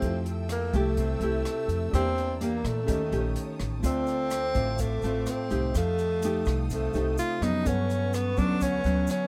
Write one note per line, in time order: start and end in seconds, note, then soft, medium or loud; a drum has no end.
0.00 0.70 F2 medium
0.00 0.71 A3 medium
0.00 0.27 C4 medium
0.00 0.71 E4 medium
0.00 0.71 G4 medium
0.00 1.89 G4 soft
0.00 1.90 A4 medium
0.00 1.90 A4 soft
0.00 1.88 E5 soft
0.00 1.90 E5 medium
0.00 2.84 G5 medium
0.00 2.85 E6 medium
0.00 kick medium
0.00 closed hi-hat soft
0.05 0.96 F3 soft
0.05 1.91 F4 soft
0.26 closed hi-hat soft
0.49 0.78 A#3 medium
0.49 cross-stick medium
0.49 closed hi-hat soft
0.73 1.18 C2 loud
0.73 1.18 A3 medium
0.73 1.94 A3 loud
0.73 1.18 E4 medium
0.73 1.18 G4 medium
0.73 kick medium
0.73 closed hi-hat soft
0.97 1.91 C3 medium
0.97 kick medium
0.97 closed hi-hat soft
1.20 1.43 C2 medium
1.20 1.89 A3 medium
1.20 1.89 E4 medium
1.20 1.90 G4 medium
1.20 closed hi-hat soft
1.45 cross-stick medium
1.45 closed hi-hat soft
1.68 1.91 F2 medium
1.68 closed hi-hat soft
1.91 2.61 E2 medium
1.91 2.87 E3 medium
1.91 2.37 A#3 medium
1.91 2.85 D4 soft
1.91 2.84 G4 soft
1.91 2.87 A#4 soft
1.91 2.88 D5 medium
1.91 2.88 A#5 medium
1.91 kick medium
1.91 cross-stick medium
1.91 closed hi-hat soft
1.95 2.38 C4 loud
1.95 2.38 D4 medium
1.95 2.38 G4 medium
1.95 2.88 E5 soft
2.18 closed hi-hat soft
2.41 2.86 A#3 medium
2.41 2.68 A#3 medium
2.41 2.86 D4 medium
2.41 2.86 G4 medium
2.41 closed hi-hat soft
2.64 2.86 A#2 medium
2.64 3.61 A3 medium
2.64 cross-stick medium
2.64 closed hi-hat soft
2.84 3.81 D#3 medium
2.84 3.01 A3 medium
2.84 3.79 C#4 soft
2.84 3.80 G4 soft
2.84 3.02 G4 medium
2.84 3.81 A4 soft
2.88 3.10 D#2 loud
2.88 3.02 C#4 medium
2.88 3.83 C#5 medium
2.88 3.82 D#5 medium
2.88 3.83 G5 medium
2.88 5.72 A5 medium
2.88 3.83 D#6 medium
2.88 kick medium
2.88 closed hi-hat soft
3.12 3.34 A#1 medium
3.12 3.80 A3 medium
3.12 3.80 C#4 medium
3.12 3.80 G4 medium
3.12 closed hi-hat soft
3.36 closed hi-hat soft
3.60 3.82 A1 medium
3.60 cross-stick medium
3.60 closed hi-hat soft
3.79 4.77 D3 medium
3.79 4.51 A3 medium
3.79 5.68 C4 soft
3.79 4.51 C4 soft
3.79 5.70 F4 soft
3.79 5.70 A4 soft
3.79 5.72 C5 medium
3.79 7.61 F5 medium
3.83 4.51 D2 medium
3.83 4.83 C4 loud
3.83 4.51 F4 medium
3.83 5.71 D5 medium
3.83 5.73 D6 medium
3.83 kick medium
3.83 closed hi-hat soft
3.83 shaker medium
4.07 closed hi-hat soft
4.07 shaker soft
4.30 cross-stick medium
4.30 closed hi-hat soft
4.30 shaker medium
4.54 5.00 A1 medium
4.54 4.99 A3 medium
4.54 4.99 C4 medium
4.54 4.99 F4 medium
4.54 kick medium
4.54 closed hi-hat soft
4.54 shaker soft
4.78 5.72 A2 medium
4.78 5.32 A3 medium
4.78 kick medium
4.78 closed hi-hat soft
4.78 shaker medium
5.02 5.25 A1 medium
5.02 5.47 A3 medium
5.02 5.47 C4 medium
5.02 5.48 F4 medium
5.02 closed hi-hat soft
5.02 shaker soft
5.26 5.76 C4 medium
5.26 cross-stick medium
5.26 closed hi-hat soft
5.26 shaker medium
5.50 5.73 C2 medium
5.50 6.18 A3 medium
5.50 6.18 D#4 medium
5.50 6.18 G4 medium
5.50 closed hi-hat soft
5.50 shaker soft
5.71 6.42 F2 medium
5.71 6.90 D#4 soft
5.71 6.91 G4 soft
5.71 7.63 A4 medium
5.71 shaker medium
5.75 6.68 F3 medium
5.75 6.67 A3 loud
5.75 6.92 A4 soft
5.75 6.92 F5 soft
5.75 7.64 G5 medium
5.75 7.64 D#6 medium
5.75 kick medium
5.75 cross-stick medium
5.75 closed hi-hat soft
5.98 closed hi-hat soft
5.98 shaker soft
6.22 6.91 A3 medium
6.22 6.91 D#4 medium
6.22 6.91 G4 medium
6.22 closed hi-hat soft
6.22 shaker medium
6.45 6.91 C2 loud
6.45 kick medium
6.45 cross-stick medium
6.45 closed hi-hat soft
6.45 shaker soft
6.70 7.64 C3 medium
6.70 7.16 A3 medium
6.70 kick medium
6.70 closed hi-hat soft
6.70 shaker medium
6.93 7.16 C2 medium
6.93 7.38 A3 medium
6.93 7.65 D#4 soft
6.93 7.38 D#4 medium
6.93 7.65 G4 soft
6.93 7.38 G4 medium
6.93 7.63 A4 soft
6.93 7.66 C5 soft
6.93 closed hi-hat soft
6.93 shaker soft
7.18 7.45 F4 loud
7.18 closed hi-hat soft
7.18 shaker medium
7.41 7.63 F2 medium
7.41 8.33 F#3 medium
7.41 8.34 B3 medium
7.41 8.34 C#4 medium
7.41 7.68 D#4 loud
7.41 cross-stick medium
7.41 closed hi-hat soft
7.41 shaker soft
7.62 8.58 G2 medium
7.62 8.33 G2 medium
7.62 9.27 C#4 soft
7.62 9.27 A4 soft
7.62 9.27 B4 medium
7.62 9.27 F#5 medium
7.62 9.27 A5 medium
7.62 9.27 C#6 medium
7.62 kick medium
7.62 closed hi-hat soft
7.62 shaker medium
7.67 8.16 C#4 medium
7.67 9.27 B4 soft
7.67 9.27 F#5 soft
7.90 closed hi-hat soft
7.90 shaker soft
8.13 8.40 B3 medium
8.13 cross-stick medium
8.13 closed hi-hat soft
8.13 shaker medium
8.37 8.82 D2 loud
8.37 8.81 F#3 medium
8.37 8.81 B3 medium
8.37 8.81 C#4 medium
8.37 8.64 D4 loud
8.37 kick medium
8.37 closed hi-hat soft
8.37 shaker soft
8.61 9.27 D3 medium
8.61 9.09 C#4 loud
8.61 kick medium
8.61 closed hi-hat soft
8.61 shaker medium
8.84 9.07 D2 loud
8.84 9.27 F#3 medium
8.84 9.27 B3 medium
8.84 9.27 C#4 medium
8.84 closed hi-hat soft
8.84 shaker soft
9.07 9.27 C#4 medium
9.07 cross-stick medium
9.07 closed hi-hat soft
9.07 shaker medium